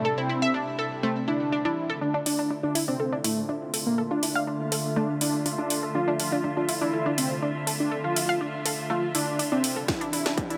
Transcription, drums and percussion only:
2.26 open hi-hat
2.75 open hi-hat
3.24 open hi-hat
3.74 open hi-hat
4.23 open hi-hat
4.72 open hi-hat
5.21 open hi-hat
5.46 open hi-hat
5.70 open hi-hat
6.20 open hi-hat
6.69 open hi-hat
7.18 open hi-hat
7.67 open hi-hat
8.16 open hi-hat
8.66 open hi-hat
9.15 open hi-hat
9.39 open hi-hat
9.64 open hi-hat
9.88 kick, snare, closed hi-hat
10.01 closed hi-hat
10.13 open hi-hat
10.26 snare, closed hi-hat
10.38 kick, closed hi-hat
10.50 closed hi-hat

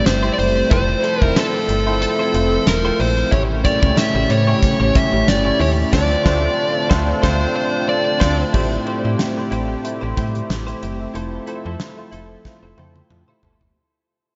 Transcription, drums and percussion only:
0.06 snare, closed hi-hat, tambourine
0.39 open hi-hat
0.71 kick, closed hi-hat
1.04 closed hi-hat
1.22 kick
1.36 snare, closed hi-hat, tambourine
1.69 closed hi-hat
2.02 closed hi-hat
2.34 closed hi-hat
2.67 snare, closed hi-hat, tambourine
3.00 open hi-hat
3.32 kick, closed hi-hat
3.65 kick, closed hi-hat
3.83 kick
3.97 snare, closed hi-hat, tambourine
4.30 closed hi-hat
4.63 kick, closed hi-hat
4.95 kick, closed hi-hat
5.28 snare, closed hi-hat, tambourine
5.61 open hi-hat
5.93 kick, snare, crash
6.26 kick, snare
6.91 kick, snare
7.23 kick, snare
8.21 kick, snare, crash
8.54 kick, crash
8.87 closed hi-hat
9.19 snare, closed hi-hat
9.52 closed hi-hat
9.85 closed hi-hat
10.17 kick, closed hi-hat
10.35 closed hi-hat
10.50 snare, closed hi-hat
10.68 closed hi-hat
10.83 closed hi-hat
11.15 closed hi-hat
11.47 closed hi-hat
11.80 snare, closed hi-hat
12.12 closed hi-hat
12.45 kick, snare
12.78 high tom
12.96 high tom
13.10 mid tom
13.43 floor tom
13.61 floor tom

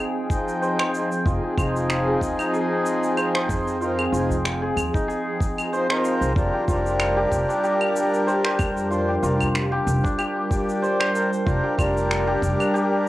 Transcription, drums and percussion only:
0.30 kick, shaker
0.48 shaker
0.63 shaker
0.79 finger snap, claves
0.95 shaker
1.12 shaker
1.26 kick, shaker
1.58 kick, claves, shaker
1.76 shaker
1.90 finger snap, shaker
2.21 kick, shaker
2.39 claves, shaker
2.54 shaker
2.86 shaker
3.03 shaker
3.17 claves, shaker
3.35 finger snap
3.49 kick, shaker
3.68 shaker
3.82 shaker
3.99 claves
4.14 shaker
4.30 udu, shaker
4.45 finger snap, shaker
4.77 claves, shaker
4.94 kick, udu, shaker
5.10 shaker
5.40 kick, shaker
5.58 claves, shaker
5.73 shaker
5.90 finger snap
6.05 shaker
6.22 shaker
6.36 kick, shaker
6.68 kick, shaker
6.86 shaker
7.00 finger snap, claves, shaker
7.32 kick, shaker
7.50 shaker
7.64 shaker
7.81 claves
7.96 shaker
8.14 shaker
8.28 shaker
8.45 finger snap
8.59 kick, claves, shaker
8.77 shaker
8.92 shaker
9.24 shaker
9.41 udu, claves, shaker
9.55 finger snap, shaker
9.88 shaker
10.04 kick, udu, shaker
10.19 claves, shaker
10.51 kick, shaker
10.69 shaker
10.84 shaker
11.00 finger snap, claves
11.15 shaker
11.33 shaker
11.47 kick, shaker
11.79 kick, claves, shaker
11.97 shaker
12.11 finger snap, shaker
12.42 kick, shaker
12.60 claves, shaker
12.76 shaker

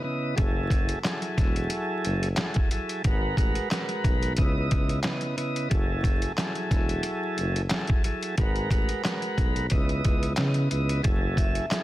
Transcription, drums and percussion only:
0.38 kick, closed hi-hat
0.70 kick, closed hi-hat
0.89 closed hi-hat
1.04 snare, clap, closed hi-hat
1.22 closed hi-hat
1.38 kick, snare, closed hi-hat
1.56 closed hi-hat
1.70 closed hi-hat
2.05 closed hi-hat
2.23 closed hi-hat
2.36 snare, clap, closed hi-hat
2.54 kick, closed hi-hat
2.71 closed hi-hat
2.89 closed hi-hat
3.04 kick, closed hi-hat
3.37 kick, closed hi-hat
3.55 closed hi-hat
3.71 snare, clap, closed hi-hat
3.89 closed hi-hat
4.04 kick, closed hi-hat
4.23 closed hi-hat
4.37 kick, closed hi-hat
4.71 kick, closed hi-hat
4.89 closed hi-hat
5.03 snare, clap, closed hi-hat
5.21 closed hi-hat
5.38 closed hi-hat
5.56 closed hi-hat
5.71 kick, closed hi-hat
6.04 kick, closed hi-hat
6.22 closed hi-hat
6.37 snare, clap, closed hi-hat
6.55 closed hi-hat
6.71 kick, snare, closed hi-hat
6.89 closed hi-hat
7.03 closed hi-hat
7.38 closed hi-hat
7.56 closed hi-hat
7.70 snare, clap, closed hi-hat
7.87 kick, closed hi-hat
8.04 closed hi-hat
8.23 closed hi-hat
8.38 kick, closed hi-hat
8.56 closed hi-hat
8.70 kick, closed hi-hat
8.89 closed hi-hat
9.04 snare, clap, closed hi-hat
9.22 closed hi-hat
9.38 kick, closed hi-hat
9.56 closed hi-hat
9.70 kick, closed hi-hat
9.89 closed hi-hat
10.05 kick, closed hi-hat
10.23 closed hi-hat
10.36 snare, clap, closed hi-hat
10.54 closed hi-hat
10.71 closed hi-hat
10.89 closed hi-hat
11.04 kick, closed hi-hat
11.37 kick, closed hi-hat
11.55 closed hi-hat
11.71 snare, clap, closed hi-hat

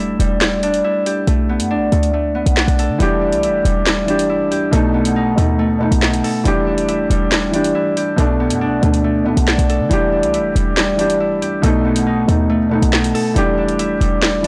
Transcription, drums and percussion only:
0.20 closed hi-hat
0.41 snare, clap
0.63 closed hi-hat
0.74 closed hi-hat
1.06 closed hi-hat
1.27 closed hi-hat
1.60 closed hi-hat
1.92 closed hi-hat
2.03 closed hi-hat
2.46 closed hi-hat
2.57 snare, clap
2.68 closed hi-hat
2.79 closed hi-hat
3.00 closed hi-hat
3.32 closed hi-hat
3.43 closed hi-hat
3.65 closed hi-hat
3.86 snare, clap
4.08 closed hi-hat
4.19 closed hi-hat
4.52 closed hi-hat
4.73 closed hi-hat
5.05 closed hi-hat
5.38 closed hi-hat
5.92 closed hi-hat
6.02 snare, clap
6.13 closed hi-hat
6.24 open hi-hat
6.45 closed hi-hat
6.78 closed hi-hat
6.89 closed hi-hat
7.11 closed hi-hat
7.32 snare, clap
7.54 closed hi-hat
7.64 closed hi-hat
7.97 closed hi-hat
8.18 closed hi-hat
8.50 closed hi-hat
8.83 closed hi-hat
8.94 closed hi-hat
9.37 closed hi-hat
9.48 snare, clap
9.59 closed hi-hat
9.70 closed hi-hat
9.91 closed hi-hat
10.23 closed hi-hat
10.34 closed hi-hat
10.56 closed hi-hat
10.77 snare, clap
10.99 closed hi-hat
11.10 closed hi-hat
11.42 closed hi-hat
11.63 closed hi-hat
11.96 closed hi-hat
12.29 closed hi-hat
12.82 closed hi-hat
12.93 snare, clap
13.04 closed hi-hat
13.15 open hi-hat
13.36 closed hi-hat
13.68 closed hi-hat
13.79 closed hi-hat
14.01 closed hi-hat
14.22 snare, clap

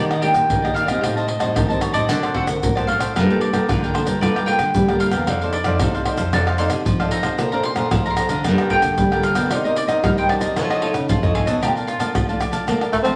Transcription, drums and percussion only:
0.11 pandeiro, tamborim, shaker
0.22 pandeiro
0.34 pandeiro, tamborim, shaker
0.50 pandeiro, shaker, surdo
0.65 pandeiro, tamborim, shaker
0.76 pandeiro, shaker
0.88 pandeiro, tamborim, shaker
1.04 pandeiro, tamborim, shaker, surdo
1.17 pandeiro, shaker
1.28 pandeiro
1.40 pandeiro, tamborim, shaker
1.56 pandeiro, tamborim, shaker, surdo
1.70 pandeiro, shaker
1.81 pandeiro, tamborim, shaker
1.94 pandeiro, shaker
2.09 pandeiro, tamborim, shaker, surdo
2.23 pandeiro, tamborim, shaker
2.34 pandeiro, surdo
2.47 pandeiro, tamborim, shaker
2.63 pandeiro, shaker, surdo
2.77 pandeiro, tamborim, shaker
2.88 pandeiro
3.00 pandeiro, tamborim, shaker
3.16 pandeiro, tamborim, shaker, surdo
3.30 pandeiro, shaker
3.41 pandeiro
3.54 pandeiro, tamborim, shaker
3.69 pandeiro, tamborim, shaker, surdo
3.84 pandeiro, shaker
3.95 pandeiro, tamborim
4.07 pandeiro, shaker
4.23 pandeiro, tamborim, shaker, surdo
4.36 pandeiro, tamborim, shaker
4.48 pandeiro
4.59 pandeiro, tamborim, shaker
4.75 pandeiro, shaker, surdo
4.89 pandeiro, tamborim, shaker
5.00 pandeiro, shaker
5.11 pandeiro, tamborim, shaker
5.27 pandeiro, tamborim, shaker, surdo
5.41 pandeiro, shaker
5.53 pandeiro
5.64 pandeiro, tamborim, shaker
5.79 pandeiro, tamborim, shaker, surdo
5.95 pandeiro, shaker
6.05 pandeiro, tamborim
6.17 pandeiro, shaker
6.33 pandeiro, tamborim, shaker, surdo
6.47 pandeiro, tamborim, shaker
6.58 pandeiro, shaker
6.70 pandeiro, tamborim, shaker
6.86 pandeiro, shaker, surdo
7.00 pandeiro, tamborim, shaker
7.11 pandeiro, shaker
7.23 pandeiro, tamborim, shaker
7.39 pandeiro, tamborim, shaker, surdo
7.52 pandeiro, shaker
7.63 pandeiro
7.76 pandeiro, tamborim, shaker
7.91 pandeiro, tamborim, shaker, surdo
8.06 pandeiro, shaker
8.17 pandeiro, tamborim, shaker
8.29 pandeiro, shaker
8.45 pandeiro, tamborim, shaker, surdo
8.58 pandeiro, tamborim, shaker
8.70 pandeiro, surdo
8.82 pandeiro, tamborim, shaker
8.98 pandeiro, shaker, surdo
9.12 pandeiro, tamborim, shaker
9.23 pandeiro, shaker
9.35 pandeiro, tamborim, shaker
9.51 pandeiro, tamborim, shaker, surdo
9.65 pandeiro, shaker
9.76 pandeiro, shaker
9.89 pandeiro, tamborim, shaker
10.04 pandeiro, tamborim, shaker, surdo
10.18 pandeiro, shaker
10.29 pandeiro, tamborim
10.41 pandeiro, shaker
10.56 pandeiro, tamborim, shaker, surdo
10.71 pandeiro, tamborim, shaker
10.82 pandeiro
10.94 pandeiro, tamborim, shaker
11.09 pandeiro, shaker, surdo
11.23 surdo, pandeiro, shaker
11.35 pandeiro, surdo
11.47 pandeiro, shaker, surdo
11.63 pandeiro, tamborim, shaker, surdo
11.77 pandeiro, shaker
11.88 pandeiro, shaker
12.00 pandeiro, tamborim, shaker
12.15 pandeiro, tamborim, shaker, surdo
12.29 pandeiro, shaker
12.40 pandeiro, tamborim, shaker
12.53 pandeiro, shaker
12.68 pandeiro, tamborim, shaker, surdo
12.81 pandeiro, tamborim, shaker
12.93 pandeiro, shaker, surdo
13.05 pandeiro, tamborim, shaker

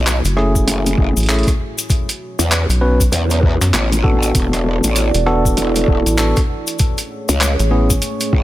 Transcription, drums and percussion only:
0.06 clap, closed hi-hat, cabasa
0.25 closed hi-hat, cabasa
0.37 cross-stick
0.55 kick, cabasa
0.68 closed hi-hat, cabasa
0.86 closed hi-hat, cabasa
0.98 kick
1.17 closed hi-hat, cabasa
1.20 closed hi-hat
1.23 closed hi-hat
1.26 clap, closed hi-hat
1.29 closed hi-hat, cabasa
1.34 closed hi-hat
1.39 closed hi-hat
1.43 kick, closed hi-hat
1.47 cross-stick, closed hi-hat, cabasa
1.78 closed hi-hat, cabasa
1.90 kick, closed hi-hat, cabasa
2.09 closed hi-hat, cabasa
2.39 closed hi-hat, cabasa
2.51 clap, closed hi-hat, cabasa
2.70 closed hi-hat, cabasa
3.00 kick, closed hi-hat, cabasa
3.12 closed hi-hat, cabasa
3.30 closed hi-hat, cabasa
3.43 kick
3.61 clap, closed hi-hat, cabasa
3.74 clap, closed hi-hat, cabasa
3.92 closed hi-hat, cabasa
4.04 kick
4.23 closed hi-hat, cabasa
4.35 kick, closed hi-hat, cabasa
4.53 cross-stick, closed hi-hat, cabasa
4.84 closed hi-hat, cabasa
4.96 closed hi-hat, cabasa
5.14 closed hi-hat, cabasa
5.27 cross-stick
5.45 kick, cabasa
5.57 closed hi-hat, cabasa
5.76 closed hi-hat, cabasa
5.88 kick
6.06 closed hi-hat, cabasa
6.17 clap, closed hi-hat, cabasa
6.36 kick, cross-stick, closed hi-hat, cabasa
6.67 closed hi-hat, cabasa
6.79 kick, closed hi-hat, cabasa
6.98 closed hi-hat, cabasa
7.29 closed hi-hat, cabasa
7.41 clap, closed hi-hat, cabasa
7.59 closed hi-hat, cabasa
7.90 kick, closed hi-hat, cabasa
8.02 closed hi-hat, cabasa
8.20 closed hi-hat, cabasa
8.33 kick

